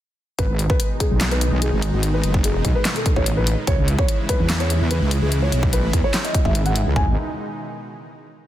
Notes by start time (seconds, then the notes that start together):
0.39 G#1 B2 D#3 G#3 D#4 B4, kick, closed hi-hat
0.49 G#1
0.59 closed hi-hat
0.70 B4, kick
0.80 closed hi-hat
1.00 G#4, kick, closed hi-hat
1.11 B1
1.21 snare, clap, closed hi-hat
1.31 B4, closed hi-hat
1.41 closed hi-hat
1.52 B1
1.62 G#4, closed hi-hat
1.73 G#1
1.82 open hi-hat
1.93 G#1 F#4
2.03 closed hi-hat
2.14 B4
2.24 F#1, closed hi-hat
2.34 kick
2.44 G#4, closed hi-hat
2.65 B1, kick, closed hi-hat
2.75 B4
2.85 snare, clap, closed hi-hat
2.96 A4, closed hi-hat
3.06 kick, closed hi-hat
3.16 A1 C#5, kick
3.26 closed hi-hat
3.37 B4
3.47 open hi-hat
3.67 C#2 C#3 E3 G#3 E4 C#5, kick, closed hi-hat
3.78 C#2
3.88 closed hi-hat
3.98 C#5, kick
4.08 closed hi-hat
4.29 B4, kick, closed hi-hat
4.40 E2
4.50 snare, clap, closed hi-hat
4.60 C#5, closed hi-hat
4.70 closed hi-hat
4.81 E2
4.91 B4, closed hi-hat
5.01 C#2
5.11 open hi-hat
5.22 C#2 G#4
5.32 closed hi-hat
5.42 C#5
5.52 B1, closed hi-hat
5.63 kick
5.73 B4, closed hi-hat
5.93 E2, kick, closed hi-hat
6.04 C#5
6.14 snare, clap, closed hi-hat
6.24 D#5, closed hi-hat
6.34 kick, closed hi-hat
6.45 G#1 E5, kick
6.55 closed hi-hat
6.66 F#5, closed hi-hat
6.76 open hi-hat
6.86 C#2
6.96 G#1 B2 D#3 G#3 D#4 G#5, kick, floor tom